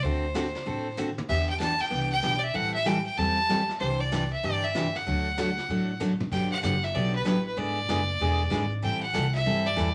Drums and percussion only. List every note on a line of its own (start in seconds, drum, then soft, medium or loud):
0.04 brush sweep soft
0.35 snare medium
0.35 hi-hat pedal medium
0.55 snare soft
0.66 brush sweep medium
0.98 hi-hat pedal medium
0.98 high tom soft
1.18 high tom medium
1.29 brush sweep soft
1.29 kick medium
1.29 crash medium
1.61 snare medium
1.61 hi-hat pedal medium
1.81 snare soft
1.92 brush sweep medium
2.24 snare medium
2.24 hi-hat pedal medium
2.55 brush sweep soft
2.87 snare medium
2.87 hi-hat pedal medium
3.18 brush sweep soft
3.49 snare medium
3.49 hi-hat pedal medium
3.69 snare soft
3.81 brush sweep soft
4.12 snare medium
4.12 hi-hat pedal medium
4.44 brush sweep medium
4.75 snare medium
4.75 hi-hat pedal medium
4.95 snare soft
5.06 brush sweep medium
5.38 snare medium
5.38 hi-hat pedal medium
5.57 snare soft
5.69 brush sweep medium
6.00 hi-hat pedal medium
6.00 mid tom soft
6.20 mid tom medium
6.32 brush sweep soft
6.32 kick medium
6.32 crash medium
6.63 snare medium
6.63 hi-hat pedal medium
6.83 snare soft
6.94 brush sweep medium
7.26 snare medium
7.26 hi-hat pedal medium
7.57 brush sweep soft
7.89 snare medium
7.89 hi-hat pedal medium
8.20 brush sweep medium
8.51 snare medium
8.51 hi-hat pedal medium
8.83 brush sweep medium
9.14 snare medium
9.14 hi-hat pedal medium
9.34 snare soft
9.46 brush sweep soft
9.77 snare medium
9.77 hi-hat pedal medium